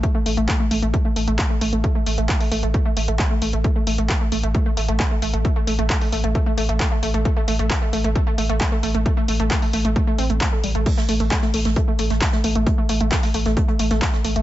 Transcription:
<<
  \new Staff \with { instrumentName = "Synth arpeggio sound" } { \time 4/4 \key c \major \tempo 4 = 133 a16 a16 a16 a16 a16 a16 a16 a16 a16 a16 a16 a16 a16 a16 a16 a16 | a16 a16 a16 a16 a16 a16 a16 a16 a16 a16 a16 a16 a16 a16 a16 a16 | a16 a16 a16 a16 a16 a16 a16 a16 a16 a16 a16 a16 a16 a16 a16 a16 | a16 a16 a16 a16 a16 a16 a16 a16 a16 a16 a16 a16 a16 a16 a16 a16 |
a16 a16 a16 a16 a16 a16 a16 a16 a16 a16 a16 a16 a16 a16 a16 a16 | a16 a16 a16 a16 a16 a16 a16 a16 a16 a16 c'16 a16 a16 a'16 g16 a16 | a16 a16 a16 a16 a16 a16 a16 a16 a16 a16 a16 a16 a16 a16 a16 a16 | a16 a16 a16 a16 a16 a16 a16 a16 a16 a16 a16 a16 a16 a16 a16 a16 | }
  \new Staff \with { instrumentName = "Sub bass" } { \clef bass \time 4/4 \key c \major r8 a,,16 a,,16 r8 a,,16 a,,16 r8 a,,16 a,,16 r8 a,,16 a,,16 | r8 a,,16 a,,16 r8 a,,16 a,,16 r8 a,,16 a,,16 r8 a,,16 a,,16 | r8 a,,16 a,,16 r8 a,,16 a,,16 r8 a,,16 a,,16 r8 a,,16 a,,16 | r8 a,,16 a,,16 r8 a,,16 a,,16 r8 a,,16 a,,16 r8 a,,16 a,,16 |
r8 a,,16 a,,16 r8 a,,16 a,,16 r8 a,,16 a,,16 r8 a,,16 a,,16 | r8 a,,16 a,,16 r8 a,,16 a,,16 r8 a,,16 a,,16 r8 a,,16 a,,16 | r8 a,,16 a,,16 r8 a,,16 a,,16 r8 a,,16 a,,16 r8 a,,16 a,,16 | r8 a,,16 a,,16 r8 a,,16 a,,16 r8 a,,16 a,,16 r8 a,,16 a,,16 | }
  \new DrumStaff \with { instrumentName = "Drums" } \drummode { \time 4/4 <hh bd>8 hho16 hh16 <hc hh bd>8 hho16 hh16 <hh bd>8 hho16 hh16 <hc hh bd>8 hho16 hh16 | <hh bd>8 hho16 hh16 <hc hh bd>16 hho16 hho16 hh16 <hh bd>8 hho16 hh16 <hc hh bd>8 hho16 hh16 | <hh bd>8 hho16 hh16 <hc hh bd>8 hho16 hh16 <hh bd>8 hho16 hh16 <hc hh bd>8 hho16 hh16 | <hh bd>8 hho16 hh16 <hc hh bd>16 hho16 hho16 hh16 <hh bd>8 hho16 hh16 <hc hh bd>8 hho16 hh16 |
<hh bd>8 hho16 hh16 <hc hh bd>8 hho16 hh16 <hh bd>8 hho16 hh16 <hc hh bd>8 hho16 hh16 | <hh bd>8 hho16 hh16 <hc hh bd>16 hho16 hho16 hh16 <hh bd>8 hho16 hh16 <hc hh bd>8 hho16 hh16 | <cymc hh bd>16 sn16 <hh hho>16 hh16 <hc hh bd sn>16 sn16 hho16 <hh sn>16 <hh bd>8 <hh hho>16 <hh sn>16 <hc hh bd sn>16 sn16 <hh hho>16 hh16 | <hh bd>8 <hh hho>16 hh16 <hc hh bd sn>16 <hho sn>16 <hh hho>16 <hh sn>16 <hh bd>16 hh16 <hh hho>16 <hh sn>16 <hc hh bd sn>16 sn16 <hh hho>16 hh16 | }
>>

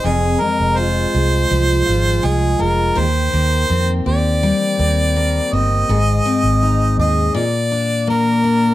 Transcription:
<<
  \new Staff \with { instrumentName = "Harmonica" } { \time 4/4 \key f \dorian \tempo 4 = 82 aes'8 bes'8 c''2 aes'8 bes'8 | c''4. d''2 ees''8~ | ees''4. ees''8 d''4 bes'4 | }
  \new Staff \with { instrumentName = "Steel-string acoustic guitar" } { \time 4/4 \key f \dorian <f, aes'>8 aes8 f'8 aes'8 f8 f'8 aes8 f'8 | <ees g'>8 bes8 c'8 g'8 g8 c'8 bes8 c'8 | <aes, aes'>8 c'8 ees'8 aes'8 bes,8 d'8 bes8 d'8 | }
  \new Staff \with { instrumentName = "Fingered electric bass" } { \clef bass \time 4/4 \key f \dorian f,,8 r16 f,,8. c,8 c,8 aes,,8 c,8 f,,8 | ees,8 ees,8 f,8 ees,8. r16 ees,4 g,,8 | aes,,8 r16 aes,,8. ees,8 r2 | }
>>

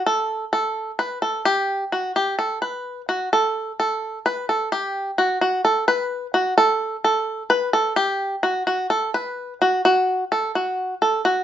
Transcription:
\new Staff \with { instrumentName = "Five-string banjo" } { \time 7/8 \key fis \phrygian \tempo 4 = 129 a'4 a'4 b'8 a'8 g'8~ | g'8 fis'8 g'8 a'8 b'4 fis'8 | a'4 a'4 b'8 a'8 g'8~ | g'8 fis'8 fis'8 a'8 b'4 fis'8 |
a'4 a'4 b'8 a'8 g'8~ | g'8 fis'8 fis'8 a'8 b'4 fis'8 | fis'4 a'8 fis'4 a'8 fis'8 | }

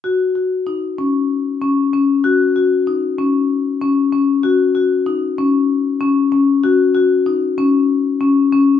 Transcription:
\new Staff \with { instrumentName = "Marimba" } { \time 7/8 \key ges \major \tempo 4 = 96 ges'8 ges'8 ees'8 des'4 des'8 des'8 | ges'8 ges'8 ees'8 des'4 des'8 des'8 | ges'8 ges'8 ees'8 des'4 des'8 des'8 | ges'8 ges'8 ees'8 des'4 des'8 des'8 | }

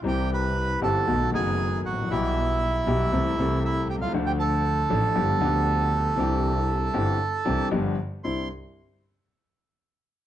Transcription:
<<
  \new Staff \with { instrumentName = "Bandoneon" } { \time 4/4 \key c \major \tempo 4 = 117 <g' g''>8 <b' b''>4 <a' a''>4 <aes' aes''>4 <fis' fis''>8 | <e' e''>2. <e' e''>8 <g' g''>16 <f' f''>16~ | <f' f''>16 <g' g''>16 <a' a''>2.~ <a' a''>8~ | <a' a''>2. r4 |
c'''8 r2. r8 | }
  \new Staff \with { instrumentName = "Grand piano" } { \clef bass \time 4/4 \key c \major << { <c, c e g c' g'>4. <g,, g, e g c' g'>8 <b,, b, dis a b fis'>8 <fis,, fis, dis a b fis'>4. | <b,, b, e g b g'>4. <b,, b, e g b g'>8 <c, c e a c' a'>8 <c, c e a c' a'>4. | <d, d f a d' a'>4. <a,, a, f a d' a'>8 <g,, g, f b d' g'>8 <d, d f b d' g'>4. | <c, c e c' d' g'>4. <g,, g, e c' d' g'>8 r8 <c, c e c' d' g'>8 <g,, g, f b d' g'>8 r8 |
<c, c' d' e'>8 r2. r8 | } \\ { r2. r8 r32 aes,,32 a,,32 bes,,32 | r2. r8 r32 b,,32 c,32 des,32 | r1 | r1 |
r1 | } >> }
  \new Staff \with { instrumentName = "Double bass" } { \clef bass \time 4/4 \key c \major c,4. g,,8 b,,8 fis,,4 a,,8 | b,,4. b,,8 c,8 c,4 c,8 | d,4. a,,8 g,,8 d,4. | c,4. g,,8 r8 c,8 g,,8 r8 |
c,8 r2. r8 | }
>>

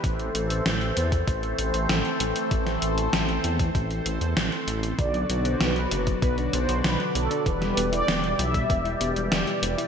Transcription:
<<
  \new Staff \with { instrumentName = "Analog polysynth" } { \time 4/4 \key a \dorian \tempo 4 = 97 r1 | r1 | d''8. c''16 b'4 b'8 c''8 b'8 a'8 | b'8. d''8. e''4 r4. | }
  \new Staff \with { instrumentName = "Analog synth pad" } { \time 4/4 \key a \dorian << { <c' c''>1~ | <c' c''>1 | <b, d''>1~ | <b, d''>1 | } \\ { <e a a'>1~ | <e a a'>1 | <d fis fis'>1 | <e g g'>1 | } >> }
  \new Staff \with { instrumentName = "Synth arpeggio sound" } { \time 4/4 \key a \dorian r1 | r1 | d16 fis16 b16 d'16 b16 fis16 d16 fis16 b16 d'16 b16 fis16 d16 fis16 b16 d'16 | e16 g16 b16 e'16 b16 g16 e16 g16 b16 e'16 b16 g16 e16 g16 b16 e'16 | }
  \new Staff \with { instrumentName = "Detuned saw bass" } { \clef bass \time 4/4 \key a \dorian a,,8 a,,8 a,,8 e,8 a,,8 a,,16 a,,16 a,,16 r16 a,,16 r16 | a,,8 a,,8 a,,8 e,8 a,,8 a,,16 e,16 a,,16 r16 a,,8 | b,,8 b,,8 b,,8 fis,,8 b,,8 b,,16 b,,16 b,,16 r16 b,,16 r16 | e,,8 e,,8 e,,8 b,,8 e,,8 e,,16 e,,16 e,,16 r16 e,,16 r16 | }
  \new DrumStaff \with { instrumentName = "Drums" } \drummode { \time 4/4 <hh bd>16 hh16 hh16 hh16 <hh sn>16 hh16 hh16 <hh bd>16 <hh bd>16 hh16 hh16 hh16 <hh sn>16 hh16 hh16 hh16 | <hh bd>16 <hh sn>16 hh16 hh16 <hh sn>16 hh16 hh16 <hh bd>16 <hh bd>16 hh16 hh16 hh16 <hh sn>16 hh16 hh16 hh16 | <hh bd>16 hh16 hh16 hh16 <hh sn>16 hh16 hh16 <hh bd>16 <hh bd>16 hh16 hh16 hh16 <hh sn>16 hh16 hh16 hh16 | <hh bd>16 <hh sn>16 hh16 hh16 <hh sn>16 hh16 hh16 <hh bd>16 <hh bd>16 hh16 hh16 hh16 <hh sn>16 hh16 hh16 hh16 | }
>>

